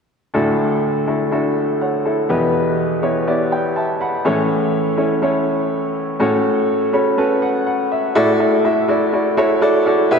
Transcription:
0.34 D2 A2 D4 E4 F#4 A4
1.07 D4 E4 F#4 A4
1.32 D4 E4 F#4 A4
1.81 C#5 F#5
2.05 E4 A4
2.29 E2 B2 B3 E4 G4 B4
3.02 B3 E4 G4 C#5
3.27 B3 E4 G4 D5
3.52 D5 G5
3.76 E5 A5
4.01 F#5 B5
4.25 A2 E3 C#4 E4 A4 C#5
4.97 C#4 E4 A4 C#5
5.22 C#4 E4 A4 C#5
6.20 A2 A3 C#4 F#4 A4 C#5
6.93 C#4 F#4 A4 C#5 B5
7.17 C#4 F#4 A4 B4 A5
7.42 F#5
7.67 F#5
7.92 E5
8.15 A2 E4 F#4 A4 D5
8.39 E4 F#4 A4 D5
8.64 E4 F#4 A4 E5
8.88 E4 F#4 A4 D5
9.12 E4 F#4 A4 D5
9.37 E4 F#4 A4 C#5
9.61 E4 F#4 A4 D5
9.86 E4 F#4 A4 D5
10.11 B2 E4 G4 B4 E5

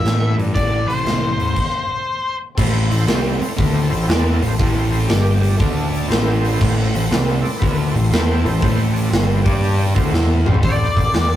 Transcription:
Already playing: A2 E3 A3 E5
0.05 A2, snare, open hi-hat
0.38 G2, open hi-hat
0.54 A1 A2 E3 A3 D5, kick, open hi-hat
0.87 C2 C5, open hi-hat
1.04 C2, snare, open hi-hat
1.37 E2, open hi-hat
1.56 kick, crash
2.55 A1 A2 E3 A3 C4 E4 A4 C5, kick, crash
2.89 A1 A2 E3 C4 E4 A4 C5, open hi-hat
3.07 C2 C3 G3 C4 E4 A4 C5, snare, open hi-hat
3.39 C4 E4 A4 C5, muted picked electric bass stroke, muted distorted electric guitar stroke, open hi-hat
3.55 D2 D3 A3 C4 D4 E4 A4 C5, kick, open hi-hat
3.89 A1 A2 E3 C4 E4 A4 C5, open hi-hat
4.07 E2 E3 B3 C4 E4 A4 D5, snare, open hi-hat
4.40 A1 A2 E3 C4 E4 A4 C5, open hi-hat
4.57 A1 A2 E3 A3 C4 E4 A4 C5, kick, open hi-hat
4.90 C4 E4 A4 C5, open hi-hat
5.06 G1 G2 D3 G3 D4 G4 D5, open hi-hat
5.10 G3, snare
5.40 G3 D4 G4 D5, open hi-hat
5.57 D2 D3 A3 D4 A4 D5, kick, open hi-hat
5.90 A3 D4 A4 D5, open hi-hat
6.07 A1 A2 E3 A3 C4 E4 A4 C5, open hi-hat
6.12 snare
6.40 C4 E4 A4 C5
6.45 open hi-hat
6.57 A2 C4 E4 A4 C5
6.61 A1 E3 A3, kick, crash
6.89 C4 E4 A4 C5
6.94 A1 A2 E3, open hi-hat
7.08 C2 C3 C4 E4 A4 C5, open hi-hat
7.12 G3 C4, snare
7.41 C4 E4 A4 D5, muted picked electric bass stroke, muted distorted electric guitar stroke
7.45 open hi-hat
7.58 D3 C4 E4 A4 B4
7.62 D2 A3 D4, kick, open hi-hat
7.91 A1 C4 E4 A4 C5
7.95 A2 E3, open hi-hat
8.09 E2 E3 B3 C4 E4 A4 C5, open hi-hat
8.14 E4, snare
8.42 A1 A2 E3 C4 E4 A4 C5, open hi-hat
8.58 A2 E3 C4 E4 A4 C5
8.62 A1 A3, kick, open hi-hat
8.91 C4 E4 A4 D5
8.96 open hi-hat
9.10 G1 G2 D3 G3 C4 E4 A4 C5, snare, open hi-hat
9.43 G2 G3 D4 G4 D5, kick, open hi-hat
9.64 open hi-hat
9.94 D2 D3 A3 C4 D4 E4 A4 C5, kick, open hi-hat
10.12 E2 E3 B3 E4, snare
10.44 A1 A2 E3 C4 E4 A4 C5, mid tom
10.48 A3
10.54 floor tom
10.61 A1 C4 E4 A4 C5 D5, kick, open hi-hat
10.93 A1 C4 E4 A4 C5, kick
10.97 open hi-hat
11.10 E2 C4 E4 A4 C5, open hi-hat
11.15 snare

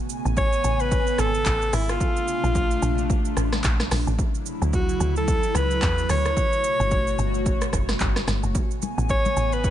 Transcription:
Already playing: C#3 B3 G#5
0.09 shaker
0.25 A1, shaker
0.37 C#5, kick, shaker
0.53 shaker
0.64 A1, shaker
0.80 B4, shaker
0.92 kick, shaker
1.07 shaker
1.18 G#1 A4, cross-stick, shaker
1.34 shaker
1.46 A1, kick, clap, shaker
1.62 shaker
1.73 G#1 E4, cross-stick, open hi-hat, shaker
1.89 F4, cross-stick, shaker
2.00 C3 A3 D4, kick, shaker
2.16 shaker
2.28 shaker
2.44 A#1, shaker
2.55 kick, shaker
2.71 shaker
2.82 A#1, shaker
2.98 shaker
3.10 kick, shaker
3.25 shaker
3.37 A1, cross-stick, shaker
3.53 cross-stick, snare, shaker
3.64 A#1, kick, clap, shaker
3.80 cross-stick, snare, shaker
3.91 A#1, cross-stick, snare, open hi-hat, shaker
4.07 A1, shaker
4.19 C#3 F#3 E4, kick, shaker
4.35 shaker
4.46 shaker
4.62 D2, shaker
4.73 F#4, kick, shaker
4.89 shaker
5.00 D2, shaker
5.16 A4, shaker
5.28 kick, shaker
5.43 shaker
5.55 C#2 B4, cross-stick, shaker
5.71 shaker
5.82 E2, kick, clap, shaker
5.98 shaker
6.09 D2 C#5, cross-stick, open hi-hat, shaker
6.25 cross-stick, shaker
6.37 B2 A3 F#4, kick, shaker
6.53 shaker
6.64 shaker
6.80 G1, shaker
6.91 kick, shaker
7.07 shaker
7.18 G1, shaker
7.34 shaker
7.46 kick, shaker
7.61 cross-stick, shaker
7.73 F#1, kick, cross-stick, shaker
7.89 cross-stick, snare, shaker
8.00 G1, kick, clap, shaker
8.16 cross-stick, snare, shaker
8.28 G1, cross-stick, snare, shaker
8.43 F#1, shaker
8.55 C#3 B3 G#5, kick, low conga, shaker
8.71 shaker
8.82 high conga, shaker
8.98 A1, shaker
9.09 C#5, kick, shaker
9.25 high conga, shaker
9.37 A1, shaker
9.52 B4, shaker
9.64 kick, shaker

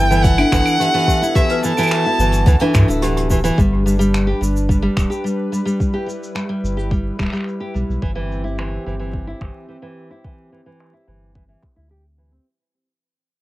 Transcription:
Already playing: G1 B3 E4 A4 G5
0.11 E3, shaker
0.23 F#5, kick, closed hi-hat, shaker
0.38 D4 E4, closed hi-hat, claves
0.52 G1 E3, finger snap, kick, shaker
0.66 closed hi-hat, claves, shaker
0.80 E3 G4, closed hi-hat, shaker
0.94 E3 G4, closed hi-hat
0.98 closed hi-hat
1.03 closed hi-hat
1.08 G4, kick, closed hi-hat, shaker
1.12 closed hi-hat
1.17 closed hi-hat
1.22 E4, closed hi-hat, shaker
1.35 E3 F#4 G4 E5, kick, closed hi-hat, shaker
1.49 B4, closed hi-hat
1.63 E3 A5, shaker
1.77 E3, closed hi-hat, claves, shaker
1.79 claves
1.82 claves, shaker
1.84 claves
1.86 claves, shaker
1.88 finger snap, closed hi-hat, claves
2.06 E4
2.19 G1 E3, shaker
2.32 closed hi-hat, shaker
2.46 D2 E3, kick, closed hi-hat, shaker
2.60 E3 D4, closed hi-hat
2.74 G2, finger snap, kick, shaker
2.88 D1 E4, closed hi-hat, shaker
3.02 E3 G4, closed hi-hat, shaker
3.17 G4, closed hi-hat
3.30 E3 G4, kick, shaker
3.44 E3, closed hi-hat, shaker
3.58 G1 G3 D4 B4, kick, shaker
3.86 G3, shaker
3.99 G3, shaker
4.14 finger snap, shaker
4.27 G4
4.41 G1 G3, shaker
4.57 shaker
4.69 G3, kick, shaker
4.82 G3
4.97 D1, finger snap, kick, shaker
5.10 G4, shaker
5.24 G3, shaker
5.52 G3, shaker
5.65 G3, shaker
5.79 E4, kick, shaker
5.94 G4
6.06 G3, shaker
6.24 shaker
6.35 G3, finger snap, shaker
6.49 G3
6.63 G1, shaker
6.77 G4, shaker
6.91 G3, kick, shaker
7.19 D1 G3, finger snap, kick, shaker
7.23 finger snap
7.26 finger snap
7.30 G3, finger snap
7.33 finger snap, shaker
7.37 finger snap
7.41 finger snap
7.44 finger snap, shaker
7.60 G4
7.74 B1 G3, shaker
7.89 B1, shaker
8.02 G1 E3 C4 G4, kick, shaker
8.15 E3
8.32 shaker
8.44 E4, shaker
8.58 E3, finger snap, shaker
8.86 G1 E3, shaker
8.99 E3, shaker
9.13 kick, shaker
9.27 E4
9.41 G1 E3, finger snap, kick, shaker
9.57 shaker
9.69 E3, shaker
9.82 E3
9.99 shaker
10.11 E4
10.24 E3, kick
10.52 E3
10.66 E3
10.80 finger snap
10.93 E4
11.07 G1 E3
11.35 E3, kick
11.49 E3
11.63 finger snap, kick
11.76 D2 E4
11.91 G4
12.18 E3
12.32 C4

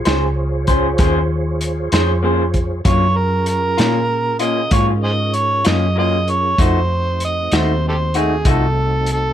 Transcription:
Already playing: F4 G#4 C5 C#5
0.05 C#2 C#4 G#4 C5, snare, closed hi-hat
0.67 C#4 G#4 C5, kick, closed hi-hat
0.98 D#2 A#3 C#4 G#4 C5, kick, snare, closed hi-hat
1.61 closed hi-hat
1.92 F2 C#4 G#4 C5, snare, closed hi-hat
2.23 A#3 C#4 G#4 C5
2.54 kick, closed hi-hat
2.85 F#2 F#3 A#3 C#4 D4 F4 F#4 A4 B4 C#5, kick, closed hi-hat
3.16 C#4 F4 G#4 A#4
3.46 A#4, closed hi-hat
3.78 A#2 A#3 C#4 F4, snare, closed hi-hat
4.39 A#3 C#4 F4 D#5, closed hi-hat
4.71 G#2 F#3 A#3 C#4 F4 C#5, kick, closed hi-hat
5.04 G#4 C5 D#5
5.34 C#5, closed hi-hat
5.65 F#2 A#3 C#4 F4 D#5, snare, closed hi-hat
5.96 F#3 A#3 C#4 F4 D#5
6.28 C#5, closed hi-hat
6.58 F2 F3 A3 C4 D#4 F#4 C5, kick, closed hi-hat
7.20 closed hi-hat
7.25 D#5
7.52 D#2 A3 D#4 F#4, snare, closed hi-hat
7.56 C5
7.89 G4 A4 C5
8.14 A3 D#4 F#4 G#4, closed hi-hat
8.45 C2 F3 A3 D#4 F#4, kick, closed hi-hat
8.51 A4
9.06 closed hi-hat
9.12 A4

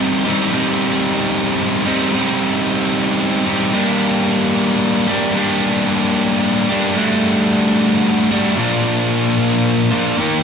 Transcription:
Already playing: G3 C4 D#4 G4
0.24 G3 C4 D#4 G4
0.51 G3 C4 D#4 G4
1.85 G3 C4 D#4 G4
2.12 G3 C4 D#4 G4
3.46 G3 C4 D#4 G4
3.73 G3 A#3 D4 G4
5.08 G3 A#3 D4 G4
5.34 G3 A#3 D4 G4
6.69 G3 A#3 D4 G4
6.95 G3 A3 D4 F#4
8.31 G3 A3 D4 F#4
8.56 A#2 F3 A#3 D4 F4
9.91 A#2 F3 A#3 D4 F4
10.17 D#3 A#3 D#4 G4

